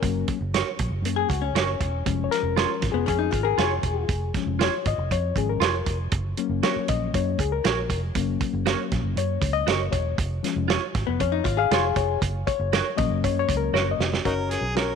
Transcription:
Already playing: reed electric piano A#4
0.02 fingered electric bass F#1, reed electric piano F#3 A#3 C#4, kick, closed hi-hat
0.28 kick, closed hi-hat
0.40 fingered electric bass F#1
0.54 clean electric guitar F#4 A#4 C#5, snare, closed hi-hat
0.79 fingered electric bass A#1, kick, closed hi-hat
0.90 fingered electric bass F#1
1.02 fingered electric bass F#2, reed electric piano F#3 A#3 C#4, closed hi-hat
1.16 hollow-body jazz guitar G#4
1.29 fingered electric bass C#2, hollow-body jazz guitar F#4, kick, closed hi-hat
1.42 hollow-body jazz guitar C#4
1.53 fingered electric bass F#1, clean electric guitar F#4 A#4 C#5, snare, closed hi-hat
1.81 fingered electric bass E1, kick, closed hi-hat
2.06 fingered electric bass F1, reed electric piano F3 G#3 C#4, kick, closed hi-hat
2.24 reed electric piano C#5
2.31 reed electric piano A#4, snare, closed hi-hat
2.43 fingered electric bass F1
2.56 clean electric guitar F4 G#4 C#5, snare, closed hi-hat
2.82 fingered electric bass G#1, kick, snare, closed hi-hat
2.92 fingered electric bass F1, hollow-body jazz guitar B3, reed electric piano G#4
3.06 fingered electric bass F2, hollow-body jazz guitar C#4, reed electric piano G#4, kick, closed hi-hat
3.19 hollow-body jazz guitar D#4
3.31 fingered electric bass G#1, hollow-body jazz guitar F4, kick, closed hi-hat
3.43 hollow-body jazz guitar G#4, reed electric piano A#4
3.58 fingered electric bass F1, clean electric guitar F4 G#4 C#5, reed electric piano G#4, snare, closed hi-hat
3.83 fingered electric bass E1, kick, closed hi-hat
4.09 fingered electric bass F1, kick, closed hi-hat
4.34 reed electric piano F3 G#3 C#4, kick, snare, closed hi-hat
4.46 fingered electric bass F1
4.59 clean electric guitar F4 G#4 C#5, snare, closed hi-hat
4.64 reed electric piano C#5
4.85 fingered electric bass G#1, reed electric piano D#5, kick, closed hi-hat
4.98 fingered electric bass F1
5.11 fingered electric bass F2, reed electric piano C#5, kick, closed hi-hat
5.36 fingered electric bass G#1, reed electric piano F3 G#3 C#4 G#4, kick, closed hi-hat
5.49 reed electric piano A#4
5.60 fingered electric bass F1, clean electric guitar F4 G#4 C#5, snare, closed hi-hat
5.86 fingered electric bass F1, kick, closed hi-hat
6.12 fingered electric bass F#1, kick, closed hi-hat
6.37 reed electric piano F#3 A#3 C#4, closed hi-hat
6.49 fingered electric bass F#1
6.63 clean electric guitar F#4 A#4 C#5, reed electric piano C#5, snare, closed hi-hat
6.76 muted fingered electric bass stroke
6.88 fingered electric bass A#1, reed electric piano D#5, kick, closed hi-hat
7.14 fingered electric bass F#2, reed electric piano F#3 A#3 C#4 C#5, kick, closed hi-hat
7.38 fingered electric bass C#2, reed electric piano G#4, kick, closed hi-hat
7.52 reed electric piano A#4
7.64 fingered electric bass A#1, clean electric guitar F#4 A#4 C#5, snare, closed hi-hat
7.89 fingered electric bass F1, kick, closed hi-hat
8.15 fingered electric bass F#1, reed electric piano F#3 A#3 C#4, kick, closed hi-hat
8.41 kick, closed hi-hat
8.53 fingered electric bass F#1
8.66 clean electric guitar F#4 A#4 C#5, snare, closed hi-hat
8.92 fingered electric bass A#1, kick, snare, closed hi-hat
9.03 fingered electric bass F#1
9.16 fingered electric bass F#2, reed electric piano C#5, closed hi-hat
9.41 fingered electric bass C#2, kick, closed hi-hat
9.53 reed electric piano D#5
9.67 fingered electric bass F#1, clean electric guitar F#4 A#4 C#5, snare, closed hi-hat
9.92 fingered electric bass E1, reed electric piano C#5, kick, closed hi-hat
10.18 fingered electric bass F1, kick, closed hi-hat
10.43 reed electric piano F3 G#3 C#4, snare, closed hi-hat
10.56 fingered electric bass F1
10.68 clean electric guitar F4 G#4 C#5, snare, closed hi-hat
10.95 fingered electric bass G#1, kick, snare, closed hi-hat
11.07 fingered electric bass F1, hollow-body jazz guitar B3
11.20 fingered electric bass F2, hollow-body jazz guitar C#4, reed electric piano C#5, kick, closed hi-hat
11.32 hollow-body jazz guitar D#4
11.44 fingered electric bass G#1, hollow-body jazz guitar F4, kick, closed hi-hat
11.57 hollow-body jazz guitar G#4, reed electric piano F5
11.71 fingered electric bass F1, clean electric guitar F4 G#4 C#5, snare, closed hi-hat
11.96 fingered electric bass F1, reed electric piano C#5, kick, closed hi-hat
12.22 fingered electric bass F#1, kick, closed hi-hat
12.47 reed electric piano C#5, kick, closed hi-hat
12.59 fingered electric bass F#1
12.73 clean electric guitar F#4 A#4 C#5, snare, closed hi-hat
12.96 fingered electric bass A#1, reed electric piano F#3 A#3 C#4 D#5, kick, closed hi-hat
13.10 fingered electric bass F#1
13.24 fingered electric bass F#2, reed electric piano C#5, kick, closed hi-hat
13.39 reed electric piano C#5
13.48 fingered electric bass C#2, kick, closed hi-hat
13.57 reed electric piano A#4
13.73 fingered electric bass F#1, clean electric guitar F#4 A#4 C#5, reed electric piano C#5, snare
13.91 reed electric piano D#5
13.99 fingered electric bass F1, snare
14.13 snare
14.25 fingered electric bass F#1, reed electric piano C#4 F#4 A#4 C#5, harmonica D#4 F#4 A#4, kick, closed hi-hat
14.51 harmonica G#4, snare, closed hi-hat
14.61 fingered electric bass B1
14.75 reed electric piano C#4 F#4 G#4 C#5, clean electric guitar F#4 A#4 C#5, harmonica A#4, snare, closed hi-hat
14.82 reed electric piano A#4

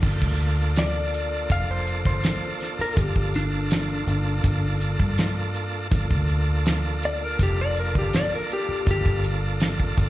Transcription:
0.02 fingered electric bass G1, tonewheel organ A#3 D4 F4 A4, kick, crash
0.22 fingered electric bass D2, kick
0.40 closed hi-hat
0.76 electric slide guitar D5, snare, closed hi-hat
1.14 closed hi-hat
1.50 fingered electric bass F1, electric slide guitar F5, kick, closed hi-hat
1.71 electric slide guitar C5
1.87 closed hi-hat
2.05 fingered electric bass G1, electric slide guitar C5, kick
2.24 snare, closed hi-hat
2.61 snare, closed hi-hat
2.79 electric slide guitar A#4, muted fingered electric bass stroke
2.97 fingered electric bass G1, electric slide guitar G4, kick, closed hi-hat
3.16 fingered electric bass G1, kick
3.34 electric slide guitar D4, snare, closed hi-hat
3.71 snare, closed hi-hat
4.07 fingered electric bass G1, closed hi-hat
4.44 fingered electric bass G1, kick, closed hi-hat
4.81 closed hi-hat
5.00 fingered electric bass G2, kick
5.18 snare, closed hi-hat
5.55 closed hi-hat
5.91 fingered electric bass G1, tonewheel organ A#3 D4 F4 A4, kick, closed hi-hat
6.11 fingered electric bass D2, kick
6.29 closed hi-hat
6.66 snare, closed hi-hat
7.03 electric slide guitar D5, closed hi-hat
7.24 electric slide guitar A#4
7.39 fingered electric bass F1, electric slide guitar G4, kick, closed hi-hat
7.61 electric slide guitar D5
7.77 electric slide guitar A#4, closed hi-hat
7.95 fingered electric bass G1, electric slide guitar G4, kick
8.13 electric slide guitar D5, snare, closed hi-hat
8.35 electric slide guitar A#4
8.50 electric slide guitar G4, closed hi-hat
8.69 muted fingered electric bass stroke
8.87 fingered electric bass G1, electric slide guitar G4, kick, closed hi-hat
9.06 fingered electric bass G1, kick
9.24 closed hi-hat
9.60 snare, closed hi-hat
9.80 kick
9.98 fingered electric bass G1, kick, closed hi-hat

